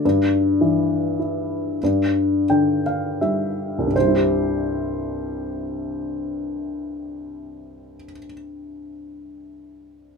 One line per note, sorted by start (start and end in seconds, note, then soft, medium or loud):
0.00 2.44 F#4 soft
0.00 2.44 D5 medium
0.05 1.78 G2 soft
0.61 1.78 E3 soft
1.19 1.80 E4 soft
1.83 3.85 G2 soft
2.50 3.92 D3 soft
2.50 2.82 G5 soft
2.86 3.18 F5 soft
3.21 3.94 G3 soft
3.21 3.92 E5 soft
3.79 7.95 C2 soft
3.86 8.03 G2 soft
3.93 8.10 C3 soft
3.93 8.12 C5 soft
4.01 8.17 G3 soft
4.08 8.24 E4 soft
4.15 8.32 G4 soft